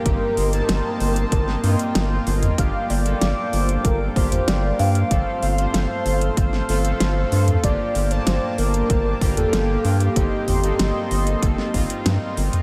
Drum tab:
HH |x-oxx-oxx-oxx-ox|x-oxx-oxx-oxx-ox|x-oxx-oxx-oxx-ox|x-oxx-oxx-oxx-ox|
SD |----o----o--o---|----o-------o---|----o----o--o---|----o-------o---|
T2 |---------------o|-----------o----|---------------o|-----------o----|
BD |o-------o-------|o-------o-o-----|o-------o-------|o-------o-o-----|

HH |x-oxx-oxx-oxx-ox|
SD |----o----o--o---|
T2 |--o------------o|
BD |o-------o-o-----|